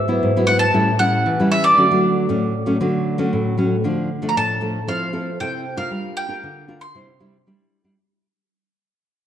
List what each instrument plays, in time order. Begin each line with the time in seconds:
Already playing: nylon-string guitar G#2, mandolin E5
0.08 nylon-string guitar F#3 B3 E4
0.23 nylon-string guitar G#2
0.37 nylon-string guitar F#3 B3 E4
0.47 nylon-string guitar F#3 B3 E4, mandolin F#5
0.59 mandolin A5
0.74 nylon-string guitar A2 G3 C#4 E4
0.99 nylon-string guitar G3 C#4 E4, mandolin F#5
1.26 nylon-string guitar E3
1.40 nylon-string guitar G3 C#4 E4
1.51 mandolin E5
1.64 mandolin D5
1.77 nylon-string guitar D3 F#3 A3 C#4
1.91 nylon-string guitar F#3 A3
2.29 nylon-string guitar A2 F#3 A3 C#4
2.66 nylon-string guitar F#3 A3 C#4
2.81 nylon-string guitar D3 F#3 A3
3.18 nylon-string guitar F#3 A3 C#4
3.33 nylon-string guitar A2
3.58 nylon-string guitar F#3 A3 C#4
3.84 nylon-string guitar D3 F3 A3 D4
4.22 nylon-string guitar F3 A3 D4
4.29 mandolin A#5
4.36 nylon-string guitar A2, mandolin A5
4.61 nylon-string guitar F3 A3 D4
4.87 nylon-string guitar F3 C4 E4 A4, mandolin F5
5.13 nylon-string guitar C4 E4 A4
5.40 nylon-string guitar C3 C4 E4 A4, mandolin G5
5.77 nylon-string guitar D4 F4 A#4, mandolin F5
5.91 nylon-string guitar G3
6.17 mandolin G5
6.28 nylon-string guitar D4 F4 A#4
6.43 nylon-string guitar D3
6.68 nylon-string guitar D4 F4 A#4
6.81 mandolin C6
6.95 nylon-string guitar C3 G3 D4 E4
7.20 nylon-string guitar G3 D4 E4
7.47 nylon-string guitar G3 D4 E4
7.84 nylon-string guitar G3 D4 E4